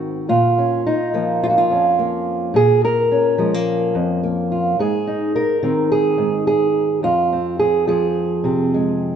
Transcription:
0.00 0.26 G#2 medium
0.00 0.30 D#3 soft
0.00 0.27 C4 soft
0.00 0.26 F#4 soft
0.29 1.71 A#2 medium
0.29 1.42 F4 medium
0.58 0.86 C#4 soft
0.87 1.71 D#4 medium
1.14 2.52 F3 medium
1.14 1.98 A#3 soft
1.43 1.49 F4 medium
1.50 1.57 F#4 medium
1.58 2.56 F4 medium
1.70 2.55 F2 medium
1.70 2.52 C#4 soft
1.99 2.52 A#3 soft
2.54 3.94 A#2 medium
2.54 2.84 G#4 loud
2.85 4.51 A#4 medium
3.12 4.76 C#4 soft
3.38 4.75 F3 medium
3.38 3.54 G#3 soft
3.54 4.22 A#3 soft
3.95 4.79 F2 medium
4.23 4.76 A#3 soft
4.52 4.79 F4 soft
4.79 6.17 G#2 medium
4.79 5.35 G#4 medium
5.07 7.00 D#4 soft
5.36 5.91 A#4 medium
5.63 7.03 D#3 medium
5.63 7.00 C4 soft
5.92 6.46 G#4 medium
6.18 6.99 G#2 medium
6.47 7.03 G#4 medium
7.03 9.16 F2 medium
7.03 7.59 F4 medium
7.33 8.44 C4 soft
7.59 7.87 G#4 medium
7.87 9.16 F3 medium
7.87 9.16 G#4 medium
8.44 9.16 C3 medium
8.44 9.16 C4 soft
8.74 9.16 G#3 soft

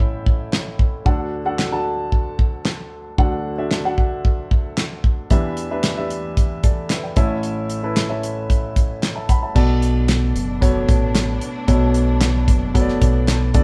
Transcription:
0.00 0.76 A1 medium
0.00 0.76 A2 medium
0.00 1.08 C#4 medium
0.00 1.08 E4 medium
0.00 1.06 A4 medium
0.00 1.07 E5 medium
0.00 0.48 G5 medium
0.00 kick medium
0.26 kick medium
0.53 snare loud
0.53 clap medium
0.79 kick medium
1.05 3.14 D2 medium
1.05 3.14 D3 medium
1.05 1.39 D4 medium
1.05 1.39 F#4 medium
1.05 1.39 A4 medium
1.05 1.39 F#5 medium
1.05 kick medium
1.45 1.68 D4 medium
1.45 1.68 F#4 medium
1.45 1.68 A4 medium
1.45 1.68 F#5 medium
1.59 snare loud
1.59 clap medium
1.72 2.60 D4 medium
1.72 2.60 F#4 medium
1.72 2.60 A4 medium
1.72 2.60 A5 medium
2.12 kick medium
2.39 kick medium
2.65 snare medium
2.65 clap medium
3.18 5.27 D2 medium
3.18 5.27 D3 medium
3.18 3.51 D4 medium
3.18 3.51 F#4 medium
3.18 3.51 A4 medium
3.18 3.52 F#5 medium
3.18 kick medium
3.58 3.80 D4 medium
3.58 3.80 F#4 medium
3.58 3.80 A4 medium
3.58 3.80 E5 medium
3.71 snare medium
3.71 clap medium
3.85 4.73 D4 medium
3.85 4.73 F#4 medium
3.85 4.73 A4 medium
3.85 4.73 F#5 medium
3.98 kick medium
4.25 kick medium
4.51 kick medium
4.78 snare medium
4.78 clap medium
5.04 kick medium
5.30 7.13 E2 medium
5.30 7.13 E3 medium
5.30 5.64 D4 medium
5.30 5.64 G4 medium
5.30 5.64 B4 medium
5.30 5.64 E5 medium
5.30 kick medium
5.30 closed hi-hat medium
5.57 closed hi-hat medium
5.71 5.93 D4 medium
5.71 5.93 G4 medium
5.71 5.93 B4 medium
5.71 5.93 E5 medium
5.83 snare loud
5.83 clap medium
5.83 closed hi-hat medium
5.97 6.85 D4 medium
5.97 6.85 G4 medium
5.97 6.64 B4 medium
5.97 6.64 E5 medium
6.10 closed hi-hat medium
6.37 kick medium
6.37 closed hi-hat medium
6.63 6.89 A4 soft
6.63 6.89 D5 soft
6.63 kick medium
6.63 closed hi-hat medium
6.90 7.03 B4 soft
6.90 7.03 E5 medium
6.90 snare loud
6.90 clap medium
6.90 closed hi-hat medium
7.03 7.29 D5 soft
7.03 7.29 G5 medium
7.16 9.25 A1 medium
7.16 9.25 A2 medium
7.16 7.71 C#4 medium
7.16 7.72 E4 medium
7.16 7.72 A4 medium
7.16 7.72 E5 medium
7.16 kick medium
7.16 closed hi-hat medium
7.43 closed hi-hat medium
7.70 closed hi-hat medium
7.83 8.05 C#4 medium
7.83 8.05 E4 medium
7.83 8.05 A4 medium
7.83 8.05 B4 medium
7.96 snare loud
7.96 clap medium
7.96 closed hi-hat medium
8.09 8.97 C#4 medium
8.09 8.98 E4 medium
8.09 8.98 A4 medium
8.09 8.98 E5 medium
8.23 closed hi-hat medium
8.50 kick medium
8.50 closed hi-hat medium
8.76 kick medium
8.76 closed hi-hat medium
9.03 snare loud
9.03 clap medium
9.03 closed hi-hat medium
9.16 9.29 E5 soft
9.16 9.28 A5 medium
9.29 9.42 F#5 soft
9.29 9.42 B5 medium
9.29 kick medium
9.29 closed hi-hat medium
9.42 9.68 E5 soft
9.42 9.68 A5 medium
9.54 10.31 B1 medium
9.54 13.50 B2 medium
9.54 10.31 B2 medium
9.54 13.50 A3 medium
9.54 10.43 B3 medium
9.54 13.50 D4 medium
9.54 10.43 F#4 medium
9.54 10.44 A4 medium
9.54 10.44 D5 medium
9.54 kick medium
9.54 crash medium
9.82 closed hi-hat medium
10.08 snare loud
10.08 clap medium
10.08 closed hi-hat medium
10.35 10.85 F#1 medium
10.35 closed hi-hat medium
10.61 11.50 B3 medium
10.61 11.50 F#4 medium
10.61 11.50 A4 medium
10.61 11.50 C#5 medium
10.61 kick medium
10.61 closed hi-hat medium
10.88 11.38 A1 medium
10.88 kick medium
10.88 closed hi-hat medium
11.15 snare loud
11.15 clap medium
11.15 closed hi-hat medium
11.41 closed hi-hat medium
11.68 12.49 B1 loud
11.68 12.44 B2 medium
11.68 12.56 B3 medium
11.68 12.56 F#4 medium
11.68 12.56 A4 medium
11.68 12.56 C#5 medium
11.68 kick medium
11.68 closed hi-hat medium
11.94 closed hi-hat medium
12.21 snare loud
12.21 clap medium
12.21 closed hi-hat medium
12.48 12.97 F#1 medium
12.48 kick medium
12.48 closed hi-hat medium
12.74 13.52 B3 medium
12.74 13.53 F#4 medium
12.74 13.53 A4 medium
12.74 12.81 C#5 medium
12.74 kick medium
12.74 closed hi-hat medium
12.81 13.53 D5 medium
12.88 snare soft
13.02 13.51 B1 medium
13.02 kick medium
13.02 closed hi-hat medium
13.28 snare loud
13.28 clap medium
13.28 closed hi-hat medium
13.54 13.64 D2 medium
13.54 13.64 D3 medium
13.54 13.64 B3 medium
13.54 13.64 F#4 medium
13.54 13.64 A4 medium
13.54 13.64 D5 medium
13.54 kick medium
13.54 closed hi-hat medium

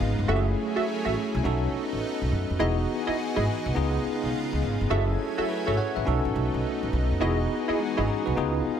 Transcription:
0.00 0.16 G#1 medium
0.00 0.28 C#3 medium
0.00 0.26 G#3 medium
0.00 0.28 G#3 medium
0.00 0.26 B3 medium
0.00 0.28 B3 medium
0.00 0.27 D#4 medium
0.00 0.27 F4 medium
0.00 0.28 F4 medium
0.19 0.27 G1 medium
0.28 0.53 F#1 loud
0.28 1.43 F#3 medium
0.28 1.41 A3 medium
0.28 1.43 A3 medium
0.28 1.42 C#4 medium
0.28 1.43 C#4 medium
0.28 1.43 E4 medium
0.28 1.42 E4 medium
0.28 0.46 F#4 medium
0.28 0.38 G4 medium
0.28 1.43 G#4 medium
0.28 0.46 A4 medium
0.28 0.46 E5 loud
0.36 1.46 G#4 medium
0.76 0.86 F#4 medium
0.76 0.86 A4 medium
0.76 0.86 E5 medium
0.76 muted upright bass stroke soft
1.05 1.14 A1 loud
1.05 1.15 F#4 medium
1.05 1.15 A4 medium
1.05 1.15 E5 medium
1.35 1.43 B1 loud
1.43 1.69 B1 loud
1.43 2.59 A3 medium
1.43 2.59 B3 medium
1.43 2.57 C#4 medium
1.43 2.57 D#4 medium
1.43 2.59 D#4 medium
1.43 2.58 F#4 medium
1.43 2.58 A4 medium
1.74 muted upright bass stroke medium
1.93 2.01 A1 medium
2.21 2.30 B1 medium
2.32 2.47 F#2 loud
2.50 2.58 F2 medium
2.59 2.84 E1 loud
2.59 3.74 E3 medium
2.59 3.72 B3 medium
2.59 4.88 B3 medium
2.59 4.88 D#4 medium
2.59 3.73 D#4 medium
2.59 2.77 E4 medium
2.59 3.74 F#4 medium
2.59 3.73 F#4 medium
2.59 2.77 G#4 medium
2.59 3.74 G#4 medium
2.59 2.77 D#5 loud
3.07 3.17 E4 medium
3.07 3.17 G#4 medium
3.07 3.17 D#5 medium
3.07 muted upright bass stroke soft
3.36 3.45 G#1 loud
3.36 3.46 E4 medium
3.36 3.46 G#4 medium
3.36 3.46 D#5 medium
3.66 3.74 B1 loud
3.74 4.00 C#2 loud
3.74 4.89 C#3 medium
3.74 4.89 G#3 medium
3.74 4.88 B3 medium
3.74 4.88 D#4 medium
3.74 4.89 F4 medium
3.74 4.89 G#4 medium
4.05 muted upright bass stroke soft
4.23 4.32 B1 medium
4.52 4.61 C#2 medium
4.63 4.78 G#1 medium
4.81 4.89 G1 medium
4.90 5.15 F#1 loud
4.90 6.05 F#3 medium
4.90 6.04 A3 medium
4.90 6.03 C#4 medium
4.90 6.05 C#4 medium
4.90 6.05 E4 medium
4.90 6.04 E4 medium
4.90 5.08 F#4 medium
4.90 5.47 G#4 medium
4.90 5.08 A4 medium
4.90 5.48 A4 medium
4.90 5.08 E5 loud
4.90 6.05 G#5 medium
5.38 5.47 F#4 medium
5.38 5.48 A4 medium
5.38 5.48 E5 medium
5.38 muted upright bass stroke soft
5.49 5.66 F#4 medium
5.49 5.66 B4 medium
5.67 5.76 G#1 loud
5.67 5.76 F#4 medium
5.67 5.77 G#4 medium
5.67 5.76 A4 medium
5.67 5.77 C#5 medium
5.67 5.77 E5 medium
5.77 5.95 C#5 medium
5.77 5.95 F#5 medium
5.96 6.05 A1 medium
5.96 6.23 B4 medium
5.96 6.23 E5 medium
6.05 6.22 B1 loud
6.05 7.20 A3 medium
6.05 8.80 B3 medium
6.05 7.19 C#4 medium
6.05 8.34 D#4 medium
6.05 7.19 D#4 medium
6.05 7.19 F#4 medium
6.05 7.20 A4 medium
6.25 6.33 A1 loud
6.36 6.51 B1 loud
6.54 6.62 B1 medium
6.83 6.91 A1 medium
6.93 7.08 B1 loud
7.11 7.20 F2 medium
7.20 7.46 E1 loud
7.20 8.35 E3 medium
7.20 7.77 B3 medium
7.20 7.77 D#4 medium
7.20 7.38 E4 medium
7.20 8.35 F#4 medium
7.20 7.78 F#4 medium
7.20 8.35 G#4 medium
7.20 7.39 G#4 medium
7.20 7.78 G#4 medium
7.20 7.39 D#5 loud
7.68 7.78 E4 medium
7.68 7.78 G#4 medium
7.68 7.78 D#5 medium
7.68 muted upright bass stroke soft
7.79 7.97 G#3 medium
7.79 7.96 D#4 medium
7.97 8.07 G#1 medium
7.97 8.07 C#4 medium
7.97 8.07 E4 medium
7.97 8.07 F#4 medium
7.97 8.07 G#4 medium
7.97 8.07 D#5 medium
8.07 8.25 D#4 medium
8.07 8.25 G#4 medium
8.26 8.35 B1 medium
8.26 8.54 F#4 medium
8.26 8.53 B4 medium
8.35 8.61 C#2 loud
8.35 8.80 C#3 medium
8.35 8.80 G#3 medium
8.35 8.80 B3 medium
8.35 8.80 D#4 medium
8.35 8.80 F4 medium
8.35 8.80 G#4 medium
8.66 muted upright bass stroke soft

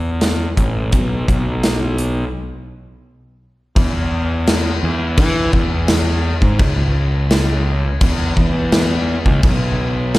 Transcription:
0.00 0.46 E2 medium
0.21 snare loud
0.21 closed hi-hat medium
0.57 0.89 A1 medium
0.57 kick medium
0.57 closed hi-hat medium
0.92 1.24 B1 medium
0.92 kick loud
0.92 closed hi-hat medium
1.28 2.23 B1 medium
1.28 kick medium
1.28 closed hi-hat medium
1.64 snare loud
1.64 closed hi-hat medium
1.98 closed hi-hat medium
3.76 4.71 E2 medium
3.76 kick loud
3.76 crash medium
4.47 snare loud
4.47 crash medium
4.83 5.19 E2 medium
5.17 5.49 E3 loud
5.17 kick loud
5.17 crash medium
5.53 6.32 E2 medium
5.53 kick medium
5.88 snare loud
5.88 crash medium
6.42 6.58 G#2 medium
6.42 kick medium
6.59 7.86 C#2 loud
6.59 kick loud
6.59 crash medium
7.31 snare loud
7.31 crash medium
8.01 8.33 E2 medium
8.01 kick loud
8.01 crash medium
8.37 9.16 E2 medium
8.37 kick medium
8.72 snare loud
8.72 crash medium
9.26 9.41 C#2 medium
9.26 kick medium
9.43 10.19 B1 loud
9.43 kick loud
9.43 crash medium
10.14 snare loud
10.14 crash medium

